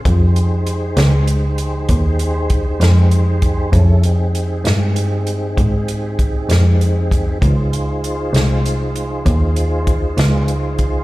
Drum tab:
HH |xxxxxxxxxxxx|xxxxxxxxxxxx|xxxxxxxxxxxx|
SD |---o-----o--|---o-----o--|---o-----o--|
BD |o-----o-o--o|o-----o-o--o|o-----o-o--o|